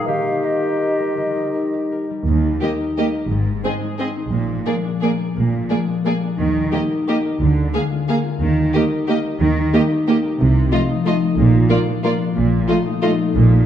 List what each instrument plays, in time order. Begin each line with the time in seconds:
Already playing: harp A#4
0.07 bassoon D#3, harp D#3, clarinet G4, flute F5
0.25 harp D#4
0.43 harp A#4, flute D#5
0.63 harp G4
0.81 harp A#4
0.99 harp G3
1.17 harp D#3
1.35 harp D#4
1.54 harp A#4
1.73 harp G4
1.92 harp A#4
2.10 harp G3
2.27 double bass section D#2, cello section D#2, harp D#3
2.45 harp G3
2.62 viola section A#3, harp D#4, violin section G4 D#5
2.80 harp A#4
2.98 viola section A#3, harp G4, violin section G4 D#5
3.15 harp A#4
3.31 double bass section G#1, harp G#2, cello section G#2
3.46 harp D#3
3.64 harp G#3, viola section C4, violin section G#4 D#5
3.81 harp D#4
3.99 viola section C4, violin section G#4 D#5, harp C5
4.16 harp D#4
4.32 double bass section A#1, cello section A#2, harp A#2
4.49 harp F3
4.66 harp G#3, viola section A#3, violin section G#4 D5
4.85 harp D4
5.02 viola section A#3, violin section G#4 D5, harp A#4
5.20 harp D4
5.36 double bass section A#1, cello section A#2, harp A#2
5.53 harp F3
5.70 harp G#3, viola section A#3, violin section G#4 D5
5.88 harp D4
6.05 viola section A#3, violin section G#4 D5, harp A#4
6.23 harp D4
6.38 double bass section D#2, cello section D#3, harp D#3
6.56 harp G3
6.73 viola section A#3, harp D#4, violin section G4 D#5
6.91 harp A#4
7.08 viola section A#3, harp G4, violin section G4 D#5
7.25 harp A#4
7.41 double bass section D2, harp D3, cello section D3
7.58 harp D4
7.74 harp G#3, viola section A#3, violin section G#4 F5
7.92 harp F4
8.09 viola section A#3, violin section G#4 F5, harp A#4
8.25 harp F4
8.41 double bass section D#2, harp D#3, cello section D#3
8.57 harp G3
8.74 viola section A#3, harp D#4, violin section G4 D#5
8.92 harp A#4
9.08 viola section A#3, violin section G4 D#5, harp G4
9.26 harp A#4
9.41 double bass section D#2, cello section D#3, harp D#3
9.57 harp G3
9.73 viola section A#3, harp D#4, violin section G4 D#5
9.91 harp A#4
10.08 viola section A#3, violin section G4 D#5, harp G4
10.25 harp A#4
10.39 double bass section C2, cello section C3, harp C3
10.56 harp C4
10.72 harp F3, viola section A3, violin section F4 D#5
10.90 harp D#4
11.05 viola section A3, violin section F4 D#5, harp A4
11.23 harp D#4
11.38 double bass section A#1, cello section A#2, harp A#2
11.54 harp A#3
11.70 harp F3, viola section A#3, violin section F4 D5
11.88 harp D4
12.04 viola section A#3, violin section F4 D5, harp A#4
12.21 harp D4
12.36 double bass section A#1, harp A#2, cello section A#2
12.52 harp A#3
12.69 harp F3, viola section A3, violin section F4 D#5
12.86 harp D#4
13.02 viola section A3, violin section F4 D#5, harp A4
13.19 harp D#4
13.35 double bass section A#1, harp A#2, cello section A#2
13.51 harp A#3